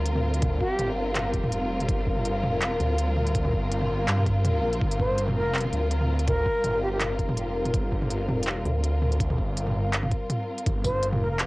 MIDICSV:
0, 0, Header, 1, 5, 480
1, 0, Start_track
1, 0, Key_signature, -2, "minor"
1, 0, Tempo, 365854
1, 552, Time_signature, 4, 2, 24, 8
1, 15042, End_track
2, 0, Start_track
2, 0, Title_t, "Flute"
2, 0, Program_c, 0, 73
2, 793, Note_on_c, 0, 67, 100
2, 1163, Note_off_c, 0, 67, 0
2, 6556, Note_on_c, 0, 72, 92
2, 6846, Note_off_c, 0, 72, 0
2, 7036, Note_on_c, 0, 70, 93
2, 7326, Note_off_c, 0, 70, 0
2, 8235, Note_on_c, 0, 70, 93
2, 8910, Note_off_c, 0, 70, 0
2, 8955, Note_on_c, 0, 67, 87
2, 9037, Note_off_c, 0, 67, 0
2, 9084, Note_on_c, 0, 67, 77
2, 9154, Note_off_c, 0, 67, 0
2, 14234, Note_on_c, 0, 72, 94
2, 14525, Note_off_c, 0, 72, 0
2, 14715, Note_on_c, 0, 70, 87
2, 14797, Note_off_c, 0, 70, 0
2, 14845, Note_on_c, 0, 70, 77
2, 14914, Note_off_c, 0, 70, 0
2, 15042, End_track
3, 0, Start_track
3, 0, Title_t, "String section"
3, 0, Program_c, 1, 48
3, 0, Note_on_c, 1, 55, 75
3, 0, Note_on_c, 1, 60, 68
3, 0, Note_on_c, 1, 65, 85
3, 0, Note_on_c, 1, 70, 83
3, 15042, Note_off_c, 1, 55, 0
3, 15042, Note_off_c, 1, 60, 0
3, 15042, Note_off_c, 1, 65, 0
3, 15042, Note_off_c, 1, 70, 0
3, 15042, End_track
4, 0, Start_track
4, 0, Title_t, "Detuned saw bass"
4, 0, Program_c, 2, 39
4, 0, Note_on_c, 2, 38, 98
4, 775, Note_off_c, 2, 38, 0
4, 1032, Note_on_c, 2, 31, 103
4, 1735, Note_off_c, 2, 31, 0
4, 1754, Note_on_c, 2, 29, 100
4, 2456, Note_off_c, 2, 29, 0
4, 2474, Note_on_c, 2, 31, 99
4, 3176, Note_off_c, 2, 31, 0
4, 3192, Note_on_c, 2, 29, 95
4, 3654, Note_off_c, 2, 29, 0
4, 3672, Note_on_c, 2, 38, 94
4, 4615, Note_off_c, 2, 38, 0
4, 4635, Note_on_c, 2, 31, 102
4, 5336, Note_off_c, 2, 31, 0
4, 5351, Note_on_c, 2, 43, 98
4, 6054, Note_off_c, 2, 43, 0
4, 6072, Note_on_c, 2, 34, 103
4, 6294, Note_off_c, 2, 34, 0
4, 6317, Note_on_c, 2, 31, 98
4, 7017, Note_off_c, 2, 31, 0
4, 7033, Note_on_c, 2, 29, 97
4, 7495, Note_off_c, 2, 29, 0
4, 7511, Note_on_c, 2, 38, 96
4, 8454, Note_off_c, 2, 38, 0
4, 8714, Note_on_c, 2, 31, 103
4, 9416, Note_off_c, 2, 31, 0
4, 9434, Note_on_c, 2, 29, 95
4, 10136, Note_off_c, 2, 29, 0
4, 10155, Note_on_c, 2, 31, 93
4, 10856, Note_off_c, 2, 31, 0
4, 10869, Note_on_c, 2, 29, 96
4, 11333, Note_off_c, 2, 29, 0
4, 11351, Note_on_c, 2, 38, 98
4, 12294, Note_off_c, 2, 38, 0
4, 12312, Note_on_c, 2, 31, 97
4, 13255, Note_off_c, 2, 31, 0
4, 13991, Note_on_c, 2, 31, 97
4, 14694, Note_off_c, 2, 31, 0
4, 14713, Note_on_c, 2, 29, 93
4, 15042, Note_off_c, 2, 29, 0
4, 15042, End_track
5, 0, Start_track
5, 0, Title_t, "Drums"
5, 74, Note_on_c, 9, 42, 72
5, 204, Note_on_c, 9, 45, 58
5, 205, Note_off_c, 9, 42, 0
5, 336, Note_off_c, 9, 45, 0
5, 443, Note_on_c, 9, 42, 39
5, 552, Note_off_c, 9, 42, 0
5, 552, Note_on_c, 9, 42, 80
5, 552, Note_on_c, 9, 45, 74
5, 555, Note_on_c, 9, 36, 125
5, 683, Note_off_c, 9, 42, 0
5, 683, Note_off_c, 9, 45, 0
5, 686, Note_off_c, 9, 36, 0
5, 794, Note_on_c, 9, 36, 62
5, 926, Note_off_c, 9, 36, 0
5, 1033, Note_on_c, 9, 42, 70
5, 1033, Note_on_c, 9, 45, 56
5, 1164, Note_off_c, 9, 42, 0
5, 1164, Note_off_c, 9, 45, 0
5, 1513, Note_on_c, 9, 39, 122
5, 1513, Note_on_c, 9, 42, 82
5, 1513, Note_on_c, 9, 45, 55
5, 1644, Note_off_c, 9, 39, 0
5, 1644, Note_off_c, 9, 42, 0
5, 1644, Note_off_c, 9, 45, 0
5, 1752, Note_on_c, 9, 42, 38
5, 1754, Note_on_c, 9, 36, 64
5, 1883, Note_off_c, 9, 42, 0
5, 1884, Note_on_c, 9, 45, 85
5, 1885, Note_off_c, 9, 36, 0
5, 1995, Note_on_c, 9, 42, 71
5, 2015, Note_off_c, 9, 45, 0
5, 2126, Note_off_c, 9, 42, 0
5, 2366, Note_on_c, 9, 42, 39
5, 2366, Note_on_c, 9, 45, 52
5, 2474, Note_on_c, 9, 36, 121
5, 2475, Note_off_c, 9, 42, 0
5, 2475, Note_on_c, 9, 42, 75
5, 2497, Note_off_c, 9, 45, 0
5, 2605, Note_off_c, 9, 36, 0
5, 2607, Note_off_c, 9, 42, 0
5, 2713, Note_on_c, 9, 36, 67
5, 2843, Note_on_c, 9, 45, 52
5, 2844, Note_off_c, 9, 36, 0
5, 2953, Note_on_c, 9, 42, 69
5, 2975, Note_off_c, 9, 45, 0
5, 3084, Note_off_c, 9, 42, 0
5, 3194, Note_on_c, 9, 45, 74
5, 3325, Note_off_c, 9, 45, 0
5, 3432, Note_on_c, 9, 39, 122
5, 3432, Note_on_c, 9, 42, 83
5, 3564, Note_off_c, 9, 39, 0
5, 3564, Note_off_c, 9, 42, 0
5, 3674, Note_on_c, 9, 42, 38
5, 3674, Note_on_c, 9, 45, 50
5, 3806, Note_off_c, 9, 42, 0
5, 3806, Note_off_c, 9, 45, 0
5, 3914, Note_on_c, 9, 42, 71
5, 4045, Note_off_c, 9, 42, 0
5, 4152, Note_on_c, 9, 45, 52
5, 4283, Note_off_c, 9, 45, 0
5, 4285, Note_on_c, 9, 42, 38
5, 4392, Note_off_c, 9, 42, 0
5, 4392, Note_on_c, 9, 42, 75
5, 4393, Note_on_c, 9, 36, 119
5, 4523, Note_off_c, 9, 42, 0
5, 4523, Note_on_c, 9, 45, 73
5, 4524, Note_off_c, 9, 36, 0
5, 4633, Note_on_c, 9, 36, 62
5, 4654, Note_off_c, 9, 45, 0
5, 4765, Note_off_c, 9, 36, 0
5, 4874, Note_on_c, 9, 42, 63
5, 5004, Note_on_c, 9, 45, 49
5, 5005, Note_off_c, 9, 42, 0
5, 5135, Note_off_c, 9, 45, 0
5, 5355, Note_on_c, 9, 39, 121
5, 5355, Note_on_c, 9, 42, 74
5, 5482, Note_on_c, 9, 45, 52
5, 5486, Note_off_c, 9, 39, 0
5, 5486, Note_off_c, 9, 42, 0
5, 5593, Note_on_c, 9, 42, 35
5, 5594, Note_on_c, 9, 36, 65
5, 5614, Note_off_c, 9, 45, 0
5, 5725, Note_off_c, 9, 36, 0
5, 5725, Note_off_c, 9, 42, 0
5, 5834, Note_on_c, 9, 42, 67
5, 5834, Note_on_c, 9, 45, 79
5, 5965, Note_off_c, 9, 42, 0
5, 5965, Note_off_c, 9, 45, 0
5, 6203, Note_on_c, 9, 42, 36
5, 6315, Note_on_c, 9, 36, 111
5, 6334, Note_off_c, 9, 42, 0
5, 6445, Note_on_c, 9, 42, 71
5, 6447, Note_off_c, 9, 36, 0
5, 6555, Note_on_c, 9, 36, 60
5, 6557, Note_on_c, 9, 45, 50
5, 6576, Note_off_c, 9, 42, 0
5, 6686, Note_off_c, 9, 36, 0
5, 6688, Note_off_c, 9, 45, 0
5, 6795, Note_on_c, 9, 42, 64
5, 6925, Note_on_c, 9, 45, 78
5, 6926, Note_off_c, 9, 42, 0
5, 7057, Note_off_c, 9, 45, 0
5, 7276, Note_on_c, 9, 39, 114
5, 7276, Note_on_c, 9, 42, 34
5, 7318, Note_off_c, 9, 42, 0
5, 7318, Note_on_c, 9, 42, 49
5, 7354, Note_off_c, 9, 42, 0
5, 7354, Note_on_c, 9, 42, 60
5, 7406, Note_on_c, 9, 45, 54
5, 7407, Note_off_c, 9, 39, 0
5, 7485, Note_off_c, 9, 42, 0
5, 7514, Note_on_c, 9, 42, 36
5, 7537, Note_off_c, 9, 45, 0
5, 7645, Note_off_c, 9, 42, 0
5, 7753, Note_on_c, 9, 42, 63
5, 7883, Note_on_c, 9, 45, 54
5, 7884, Note_off_c, 9, 42, 0
5, 8015, Note_off_c, 9, 45, 0
5, 8122, Note_on_c, 9, 42, 36
5, 8233, Note_off_c, 9, 42, 0
5, 8233, Note_on_c, 9, 42, 72
5, 8233, Note_on_c, 9, 45, 77
5, 8235, Note_on_c, 9, 36, 109
5, 8364, Note_off_c, 9, 42, 0
5, 8364, Note_off_c, 9, 45, 0
5, 8366, Note_off_c, 9, 36, 0
5, 8475, Note_on_c, 9, 36, 62
5, 8606, Note_off_c, 9, 36, 0
5, 8712, Note_on_c, 9, 42, 64
5, 8712, Note_on_c, 9, 45, 54
5, 8844, Note_off_c, 9, 42, 0
5, 8844, Note_off_c, 9, 45, 0
5, 9192, Note_on_c, 9, 39, 110
5, 9192, Note_on_c, 9, 42, 77
5, 9192, Note_on_c, 9, 45, 52
5, 9323, Note_off_c, 9, 39, 0
5, 9323, Note_off_c, 9, 42, 0
5, 9323, Note_off_c, 9, 45, 0
5, 9434, Note_on_c, 9, 36, 61
5, 9434, Note_on_c, 9, 42, 35
5, 9563, Note_on_c, 9, 45, 80
5, 9565, Note_off_c, 9, 36, 0
5, 9565, Note_off_c, 9, 42, 0
5, 9672, Note_on_c, 9, 42, 66
5, 9694, Note_off_c, 9, 45, 0
5, 9803, Note_off_c, 9, 42, 0
5, 10042, Note_on_c, 9, 42, 36
5, 10042, Note_on_c, 9, 45, 55
5, 10153, Note_off_c, 9, 42, 0
5, 10153, Note_on_c, 9, 42, 72
5, 10154, Note_on_c, 9, 36, 113
5, 10174, Note_off_c, 9, 45, 0
5, 10284, Note_off_c, 9, 42, 0
5, 10285, Note_off_c, 9, 36, 0
5, 10394, Note_on_c, 9, 36, 58
5, 10523, Note_on_c, 9, 45, 58
5, 10525, Note_off_c, 9, 36, 0
5, 10633, Note_on_c, 9, 42, 65
5, 10654, Note_off_c, 9, 45, 0
5, 10765, Note_off_c, 9, 42, 0
5, 10872, Note_on_c, 9, 45, 84
5, 11003, Note_off_c, 9, 45, 0
5, 11058, Note_on_c, 9, 42, 81
5, 11114, Note_on_c, 9, 39, 110
5, 11189, Note_off_c, 9, 42, 0
5, 11246, Note_off_c, 9, 39, 0
5, 11355, Note_on_c, 9, 42, 37
5, 11355, Note_on_c, 9, 45, 53
5, 11486, Note_off_c, 9, 42, 0
5, 11486, Note_off_c, 9, 45, 0
5, 11595, Note_on_c, 9, 42, 66
5, 11726, Note_off_c, 9, 42, 0
5, 11836, Note_on_c, 9, 45, 57
5, 11966, Note_on_c, 9, 42, 36
5, 11967, Note_off_c, 9, 45, 0
5, 12072, Note_on_c, 9, 36, 112
5, 12074, Note_off_c, 9, 42, 0
5, 12074, Note_on_c, 9, 42, 77
5, 12204, Note_off_c, 9, 36, 0
5, 12204, Note_on_c, 9, 45, 81
5, 12206, Note_off_c, 9, 42, 0
5, 12312, Note_on_c, 9, 36, 61
5, 12336, Note_off_c, 9, 45, 0
5, 12443, Note_off_c, 9, 36, 0
5, 12556, Note_on_c, 9, 42, 67
5, 12684, Note_on_c, 9, 45, 58
5, 12687, Note_off_c, 9, 42, 0
5, 12815, Note_off_c, 9, 45, 0
5, 13032, Note_on_c, 9, 39, 110
5, 13032, Note_on_c, 9, 42, 77
5, 13161, Note_on_c, 9, 45, 55
5, 13163, Note_off_c, 9, 39, 0
5, 13163, Note_off_c, 9, 42, 0
5, 13270, Note_on_c, 9, 42, 37
5, 13272, Note_on_c, 9, 36, 59
5, 13292, Note_off_c, 9, 45, 0
5, 13401, Note_off_c, 9, 42, 0
5, 13403, Note_off_c, 9, 36, 0
5, 13512, Note_on_c, 9, 42, 67
5, 13512, Note_on_c, 9, 45, 84
5, 13643, Note_off_c, 9, 42, 0
5, 13643, Note_off_c, 9, 45, 0
5, 13883, Note_on_c, 9, 42, 39
5, 13992, Note_off_c, 9, 42, 0
5, 13992, Note_on_c, 9, 36, 118
5, 13992, Note_on_c, 9, 42, 83
5, 14123, Note_off_c, 9, 42, 0
5, 14124, Note_off_c, 9, 36, 0
5, 14229, Note_on_c, 9, 45, 54
5, 14229, Note_on_c, 9, 54, 65
5, 14232, Note_on_c, 9, 36, 63
5, 14360, Note_off_c, 9, 45, 0
5, 14360, Note_off_c, 9, 54, 0
5, 14364, Note_off_c, 9, 36, 0
5, 14469, Note_on_c, 9, 42, 67
5, 14600, Note_off_c, 9, 42, 0
5, 14600, Note_on_c, 9, 45, 85
5, 14731, Note_off_c, 9, 45, 0
5, 14949, Note_on_c, 9, 39, 115
5, 14949, Note_on_c, 9, 42, 82
5, 15042, Note_off_c, 9, 39, 0
5, 15042, Note_off_c, 9, 42, 0
5, 15042, End_track
0, 0, End_of_file